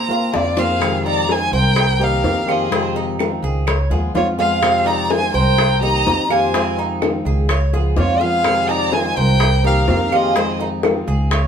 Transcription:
Already playing: upright bass A#2, violin A#5
0.09 steel-string acoustic guitar A#3 C4 F4, cuban tres F4, high bongo
0.33 upright bass F2, steel-string acoustic guitar D3 A#3 C4 F4, violin section F4, violin D5, high bongo
0.57 steel-string acoustic guitar A#3 C4 F4, cuban tres C4, violin section G#4, violin F5, low bongo
0.80 steel-string acoustic guitar C3 D#3 G#3 C4 F4, high bongo, claves
1.05 cuban tres D#4, violin section D5, violin A#5, high bongo
1.29 steel-string acoustic guitar D#3 G#3 C4 F4, violin section C5, violin G#5, high bongo
1.51 upright bass C2, violin section A#4, cuban tres C5
1.56 violin G5
1.76 muted steel-string acoustic guitar stroke, high bongo, claves
1.99 steel-string acoustic guitar D#3 A#3 C4 G4, cuban tres D#4, violin section A#4, high bongo
2.04 violin F5
2.23 upright bass F2, steel-string acoustic guitar D#3 A#3 C4 G4, high bongo, low bongo
2.47 steel-string acoustic guitar D#3 A#3 C4 G4, cuban tres F4, violin section G#4, high bongo, claves
2.51 violin D#5
2.70 steel-string acoustic guitar C3 D#3 G#3 C4 F4, cuban tres C4, high bongo
2.96 cuban tres D#4, high bongo
3.19 steel-string acoustic guitar D#3 G#3 C4 F4, high bongo, claves
3.42 upright bass C#2, cuban tres G#4
3.67 cuban tres C#5, muted steel-string acoustic guitar stroke, high bongo, claves
3.90 upright bass D#2, steel-string acoustic guitar F3 G#3 B3 F4, cuban tres G#4, high bongo
4.14 upright bass F2, steel-string acoustic guitar F3 G#3 B3 F4, cuban tres F4, violin section F4, violin C#5, high bongo, low bongo
4.38 steel-string acoustic guitar F3 G#3 B3 F4, cuban tres F4, violin section G#4, violin F5, high bongo
4.62 steel-string acoustic guitar C3 D#3 G#3 C4 F4, high bongo, claves
4.86 cuban tres D#4, violin section D5, violin A#5, high bongo
5.10 steel-string acoustic guitar D#3 G#3 C4 F4, violin section C5, violin G#5, high bongo
5.34 upright bass C2, violin section A#4, cuban tres C5, violin G5
5.58 muted steel-string acoustic guitar stroke, high bongo, claves
5.81 steel-string acoustic guitar D#3 A#3 C4 G4, cuban tres D#4, violin section D#5, violin A#5, high bongo
6.06 upright bass F2, steel-string acoustic guitar D#3 A#3 C4 G4, high bongo, low bongo
6.30 steel-string acoustic guitar D#3 A#3 C4 G4, cuban tres F4, violin section C5, violin G#5, high bongo, claves
6.53 steel-string acoustic guitar C3 D#3 G#3 C4 F4, cuban tres C4, high bongo
6.78 cuban tres D#4, high bongo
7.02 steel-string acoustic guitar D#3 G#3 C4 F4, high bongo, claves
7.25 upright bass C#2, cuban tres G#4
7.49 cuban tres C#5, muted steel-string acoustic guitar stroke, high bongo, claves
7.73 steel-string acoustic guitar F3 G#3 B3 F4, cuban tres G#4, high bongo
7.97 upright bass F2, steel-string acoustic guitar F3 G#3 B3 F4, violin section F4, cuban tres F4, violin C#5, high bongo, low bongo
8.20 steel-string acoustic guitar F3 G#3 B3 F4, cuban tres F4, violin section G#4, violin F5, high bongo
8.44 steel-string acoustic guitar C3 D#3 G#3 C4 F4, high bongo, claves
8.68 cuban tres D#4, violin section D5, violin A#5, high bongo
8.92 steel-string acoustic guitar D#3 G#3 C4 F4, violin section C5, violin G#5, high bongo
9.16 upright bass C2, violin section A#4, cuban tres C5, violin G5
9.40 muted steel-string acoustic guitar stroke, high bongo, claves
9.63 steel-string acoustic guitar D#3 A#3 C4 G4, cuban tres D#4, violin section A#4, violin F5, high bongo
9.87 upright bass F2, steel-string acoustic guitar D#3 A#3 C4 G4, high bongo, low bongo
10.11 steel-string acoustic guitar D#3 A#3 C4 G4, cuban tres F4, violin section G#4, high bongo, claves
10.15 violin D#5
10.35 steel-string acoustic guitar C3 D#3 G#3 C4 F4, cuban tres C4, high bongo
10.60 cuban tres D#4, high bongo
10.83 steel-string acoustic guitar D#3 G#3 C4 F4, high bongo, claves
11.07 upright bass C#2, cuban tres G#4
11.31 cuban tres C#5, muted steel-string acoustic guitar stroke, high bongo, claves

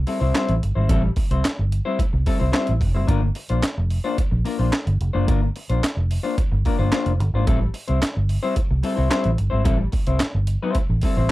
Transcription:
0.07 clean electric guitar G3 C4 E4 A4, open hi-hat
0.20 fingered electric bass C2, clean electric guitar G3 C4 E4 C5
0.35 clean electric guitar G3 C4 E4 C5, snare, clap, closed hi-hat
0.49 fingered electric bass A1, closed hi-hat
0.63 fingered electric bass G1, muted clean electric guitar stroke, closed hi-hat
0.75 fingered electric bass G#1, clean electric guitar G3 C4 E4 C5
0.89 fingered electric bass A1, clean electric guitar G3 C4 E4 A4, kick, closed hi-hat
1.03 muted clean electric guitar stroke
1.16 muted clean electric guitar stroke, kick, open hi-hat
1.31 fingered electric bass C2, clean electric guitar G3 C4 E4 C5, closed hi-hat
1.44 muted clean electric guitar stroke, muted fingered electric bass stroke, snare, clap, closed hi-hat
1.59 fingered electric bass G1, muted clean electric guitar stroke
1.72 closed hi-hat
1.85 clean electric guitar G3 C4 E4 C5
1.99 muted clean electric guitar stroke, kick, closed hi-hat
2.13 fingered electric bass C2, muted clean electric guitar stroke
2.26 clean electric guitar G3 C4 E4 A4, kick, open hi-hat
2.39 fingered electric bass C2, clean electric guitar G3 C4 E4 C5
2.52 clean electric guitar G3 C4 E4 C5, snare, clap, closed hi-hat
2.67 fingered electric bass A1, closed hi-hat
2.80 fingered electric bass F1, muted clean electric guitar stroke, kick, open hi-hat
2.94 fingered electric bass F#1, clean electric guitar G3 C4 E4 C5
3.07 fingered electric bass G1, clean electric guitar A#3 D4 F4 A#4, kick, closed hi-hat
3.22 muted clean electric guitar stroke
3.35 muted clean electric guitar stroke, open hi-hat
3.49 fingered electric bass A#1, clean electric guitar A#3 D4 F4 C5, closed hi-hat
3.63 muted clean electric guitar stroke, snare, clap, closed hi-hat
3.78 fingered electric bass F1, muted clean electric guitar stroke
3.90 open hi-hat
4.04 clean electric guitar A#3 D4 F4 C5
4.18 muted clean electric guitar stroke, kick, closed hi-hat
4.31 fingered electric bass A#1, muted clean electric guitar stroke
4.45 clean electric guitar A#3 D4 F4 A#4, open hi-hat
4.59 fingered electric bass A#1, clean electric guitar A#3 D4 F4 C5
4.73 muted clean electric guitar stroke, snare, clap, closed hi-hat
4.86 fingered electric bass G1, muted clean electric guitar stroke, closed hi-hat
5.01 fingered electric bass F1, closed hi-hat
5.13 fingered electric bass F#1, clean electric guitar A#3 D4 F4 C5
5.27 fingered electric bass G1, clean electric guitar A#3 D4 F4 A#4, kick, closed hi-hat
5.42 muted clean electric guitar stroke
5.56 muted clean electric guitar stroke, open hi-hat
5.69 fingered electric bass A#1, clean electric guitar A#3 D4 F4 C5, closed hi-hat
5.83 muted clean electric guitar stroke, snare, clap, closed hi-hat
5.96 fingered electric bass F1, muted clean electric guitar stroke
6.11 open hi-hat
6.23 clean electric guitar A#3 D4 F4 C5
6.37 muted clean electric guitar stroke, kick, closed hi-hat
6.52 fingered electric bass G1, muted clean electric guitar stroke
6.65 clean electric guitar A#3 D4 F4 A#4, kick, open hi-hat
6.78 fingered electric bass G1, clean electric guitar A#3 D4 F4 C5
6.92 clean electric guitar A#3 D4 F4 C5, snare, clap, closed hi-hat
7.06 fingered electric bass F1, closed hi-hat
7.20 fingered electric bass G1, muted clean electric guitar stroke, closed hi-hat
7.33 fingered electric bass G#1, clean electric guitar A#3 D4 F4 C5
7.47 fingered electric bass A1, clean electric guitar G3 C4 E4 A4, kick, closed hi-hat
7.60 muted clean electric guitar stroke
7.74 muted clean electric guitar stroke, open hi-hat
7.88 fingered electric bass C2, clean electric guitar G3 C4 E4 C5, closed hi-hat
8.01 muted clean electric guitar stroke, snare, clap, closed hi-hat
8.15 fingered electric bass G1, muted clean electric guitar stroke
8.29 open hi-hat
8.43 clean electric guitar G3 C4 E4 C5
8.56 muted clean electric guitar stroke, kick, closed hi-hat
8.71 fingered electric bass C2, muted clean electric guitar stroke
8.83 clean electric guitar G3 C4 E4 A4, open hi-hat
8.96 fingered electric bass C2, clean electric guitar G3 C4 E4 C5
9.09 clean electric guitar G3 C4 E4 C5, snare, clap, closed hi-hat
9.24 fingered electric bass A1, closed hi-hat
9.37 fingered electric bass G1, muted clean electric guitar stroke, closed hi-hat
9.50 fingered electric bass G#1, clean electric guitar G3 C4 E4 C5
9.64 fingered electric bass A1, clean electric guitar G3 C4 E4 A4, kick, closed hi-hat
9.78 muted clean electric guitar stroke
9.92 muted clean electric guitar stroke, kick, open hi-hat
10.07 fingered electric bass C2, clean electric guitar G3 C4 E4 C5, closed hi-hat
10.20 muted clean electric guitar stroke, muted fingered electric bass stroke, snare, clap, closed hi-hat
10.35 fingered electric bass G1, muted clean electric guitar stroke
10.47 closed hi-hat
10.62 clean electric guitar G3 C4 E4 C5
10.75 muted clean electric guitar stroke, kick, closed hi-hat
10.90 fingered electric bass A1, muted clean electric guitar stroke
11.01 clean electric guitar G3 C4 E4 A4, kick, open hi-hat
11.17 fingered electric bass A1, clean electric guitar G3 C4 E4 C5

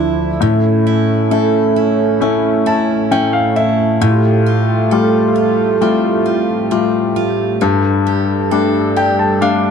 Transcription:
Already playing: grand piano D2 F3 D4 E4, analog synth pad D2 D3 F3 E4, steel-string acoustic guitar D3 D4 E4 A4
0.40 grand piano A2, analog synth pad A2 A3 C#4, steel-string acoustic guitar A2
0.87 steel-string acoustic guitar E4
1.31 grand piano A3 C#4 E4, steel-string acoustic guitar A4
1.76 steel-string acoustic guitar E4
2.21 grand piano A3 C#4 E4, steel-string acoustic guitar C#4
2.66 steel-string acoustic guitar E4, grand piano A5
3.11 grand piano A3 C#4 E4 G5, steel-string acoustic guitar C#4
3.33 grand piano F5
3.56 steel-string acoustic guitar E4, grand piano E5
4.01 grand piano A2, steel-string acoustic guitar A2, analog synth pad F4 G4
4.46 steel-string acoustic guitar F4
4.91 grand piano G3 A3 F4, steel-string acoustic guitar A4
5.36 steel-string acoustic guitar F4
5.81 grand piano G3 A3 F4, steel-string acoustic guitar C4
6.26 steel-string acoustic guitar F4
6.71 grand piano G3 A3 F4, steel-string acoustic guitar C4
7.16 steel-string acoustic guitar F4
7.60 analog synth pad G2 G3 D4 A4, grand piano G2, steel-string acoustic guitar G3
8.07 steel-string acoustic guitar G4
8.51 grand piano G3 A3 D4, steel-string acoustic guitar A4
8.96 steel-string acoustic guitar G4, grand piano G5
9.19 grand piano A5
9.41 grand piano G3 A3 D4 F5, steel-string acoustic guitar D4

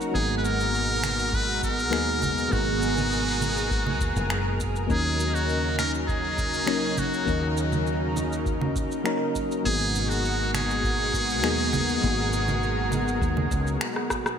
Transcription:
Already playing: analog synth pad C#3 D#4 F#4 A#4, synth keys F#3 A#3 C#4 D#4 A#4
0.01 shaker
0.11 fretless electric bass G#1, analog synth pad B2 G#3, synth keys F#3 A#3 B3, muted trumpet G#4, kick
0.15 synth keys D#4 G#4, shaker
0.38 muted trumpet B4
0.45 muted trumpet A#4, shaker
0.60 shaker
0.74 shaker
1.04 finger snap, low conga, shaker
1.19 shaker
1.33 muted trumpet B4, kick, shaker
1.63 muted trumpet A#4, kick, shaker
1.79 shaker
1.90 fretless electric bass D#2, synth keys F#3 A#3 B3 D#4 G#4, finger snap, shaker
2.22 kick, low conga, shaker
2.38 shaker
2.49 fretless electric bass G#1, synth keys F#3 A#3 B3 D#4, muted trumpet F#4, analog synth pad G#4, kick, shaker
2.53 synth keys G#4
2.82 shaker
2.97 low conga, shaker
3.12 shaker
3.41 low conga, shaker
3.57 shaker
3.71 kick, shaker
3.86 low conga
4.01 fretless electric bass D#2, kick, shaker
4.16 fretless electric bass F#1, shaker
4.30 finger snap, shaker
4.60 kick, shaker
4.76 shaker
4.86 fretless electric bass D#2, analog synth pad C#3 F#3 D#4, synth keys F#3 A#3 C#4 D#4, kick, shaker
4.91 muted trumpet G#4, synth keys A#4
5.20 shaker
5.34 muted trumpet F#4, shaker
5.49 shaker
5.79 muted trumpet A#4, finger snap, low conga, shaker
5.94 shaker
6.08 muted trumpet G#4, kick, shaker
6.38 kick, shaker
6.54 shaker
6.66 fretless electric bass A#1, synth keys F#3 A#3 C#4 D#4 A#4, finger snap, shaker
6.97 muted trumpet F#4, kick, low conga, shaker
7.13 shaker
7.25 fretless electric bass D#2, synth keys F#3 A#3 C#4 D#4, kick, shaker
7.29 synth keys A#4
7.57 shaker
7.72 low conga, shaker
7.87 shaker
8.16 low conga, shaker
8.32 shaker
8.46 kick, shaker
8.61 low conga
8.76 kick, shaker
8.92 shaker
9.04 synth keys F#3 A#3 C#4 D#4 A#4, finger snap, shaker
9.35 kick, shaker
9.52 shaker
9.63 fretless electric bass G#1, analog synth pad B2 G#3 F#4 A#4, synth keys F#3 A#3 B3 D#4, muted trumpet G#4, kick, shaker
9.68 synth keys G#4
9.95 shaker
10.10 muted trumpet F#4, shaker
10.25 shaker
10.54 muted trumpet G#4, finger snap, low conga, shaker
10.70 shaker
10.84 kick, shaker
11.14 kick, shaker
11.30 shaker
11.42 fretless electric bass D#2, synth keys F#3 A#3 B3 D#4 G#4, finger snap, shaker
11.73 kick, low conga, shaker
11.89 shaker
12.01 fretless electric bass G#1, synth keys F#3 A#3 B3 D#4, kick, shaker
12.06 synth keys G#4
12.33 shaker
12.48 low conga, shaker
12.63 shaker
12.92 low conga, shaker
13.08 shaker
13.21 fretless electric bass D#2, kick, shaker
13.37 low conga
13.51 fretless electric bass C#2, kick, shaker
13.67 shaker
13.81 finger snap, shaker
13.96 cross-stick
14.10 kick, cross-stick, shaker
14.26 cross-stick, shaker

